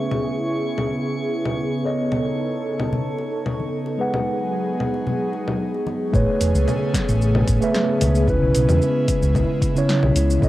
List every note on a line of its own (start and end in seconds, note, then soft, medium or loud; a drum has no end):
0.00 3.95 C#3 medium
0.00 3.95 B3 medium
0.00 1.81 C#4 medium
0.00 1.83 E4 medium
0.00 1.81 G#4 medium
0.00 1.82 G#4 medium
0.00 1.82 B4 medium
0.00 6.15 C#5 medium
0.00 1.83 E5 medium
0.00 6.15 C#6 medium
0.11 low conga medium
0.78 low conga medium
1.45 low conga medium
1.83 3.95 B3 medium
1.83 6.10 D#4 medium
1.83 3.96 A4 medium
1.83 3.98 A4 loud
1.83 3.96 C#5 medium
1.83 3.97 D#5 medium
2.12 low conga medium
2.80 high bongo soft
2.80 low conga medium
2.93 low conga medium
3.18 high bongo soft
3.46 high bongo soft
3.46 low conga medium
3.60 high conga medium
3.86 high bongo soft
3.98 6.11 F#3 medium
3.98 6.10 G#3 medium
3.98 6.11 B3 medium
3.98 6.10 G#4 medium
3.98 6.11 G#4 loud
3.98 6.11 B4 medium
3.98 6.11 F#5 medium
4.14 low conga medium
4.80 low conga medium
4.94 high bongo soft
5.07 low conga medium
5.33 high bongo medium
5.48 low conga medium
5.74 high bongo soft
5.86 high bongo medium
5.86 high conga medium
6.12 6.24 A1 loud
6.12 10.38 C#3 medium
6.12 7.58 A3 medium
6.12 8.26 A3 medium
6.12 10.38 B3 medium
6.12 7.58 G#4 medium
6.12 8.26 G#4 loud
6.12 7.59 B4 medium
6.12 7.59 C#5 loud
6.12 kick loud
6.12 shaker soft
6.41 6.51 E1 medium
6.41 open hi-hat medium
6.41 shaker medium
6.55 6.64 C#2 medium
6.55 shaker soft
6.68 low conga medium
6.68 shaker soft
6.94 kick loud
6.94 snare medium
6.94 open hi-hat medium
6.94 shaker medium
7.09 7.43 A1 loud
7.09 shaker soft
7.22 shaker soft
7.35 low conga medium
7.48 7.58 A1 medium
7.48 kick loud
7.48 open hi-hat medium
7.48 shaker medium
7.61 8.24 A3 medium
7.61 8.25 G#4 medium
7.61 8.25 B4 medium
7.61 8.26 E5 medium
7.61 shaker soft
7.75 snare medium
7.75 shaker soft
8.01 8.37 C#2 medium
8.01 open hi-hat medium
8.01 low conga medium
8.01 shaker medium
8.15 shaker soft
8.27 9.72 C#3 medium
8.27 10.41 G#3 medium
8.27 9.73 C#4 medium
8.27 10.41 E4 loud
8.27 9.73 E4 medium
8.27 9.73 B4 medium
8.27 kick loud
8.27 shaker soft
8.42 8.52 B1 medium
8.55 8.65 B1 medium
8.55 open hi-hat medium
8.55 shaker medium
8.69 8.79 E2 medium
8.69 low conga medium
8.69 shaker soft
8.82 shaker soft
9.08 kick loud
9.08 open hi-hat medium
9.08 shaker medium
9.22 9.42 C#2 loud
9.22 shaker soft
9.35 kick medium
9.35 low conga medium
9.35 shaker soft
9.62 kick loud
9.62 open hi-hat medium
9.62 shaker medium
9.75 10.39 C#3 medium
9.75 10.39 C#4 medium
9.75 10.40 E4 medium
9.75 10.40 C#5 loud
9.75 shaker soft
9.89 snare medium
9.89 shaker soft
10.03 10.12 B1 medium
10.03 low conga medium
10.15 10.36 C#2 medium
10.15 open hi-hat medium
10.15 shaker medium
10.30 shaker soft
10.41 10.49 B1 loud
10.41 10.49 C#3 medium
10.41 10.49 A3 medium
10.41 10.49 B3 medium
10.41 10.49 D#4 loud
10.41 10.49 A4 medium
10.41 10.49 C#5 medium
10.41 10.49 D#5 loud
10.41 kick loud
10.41 shaker soft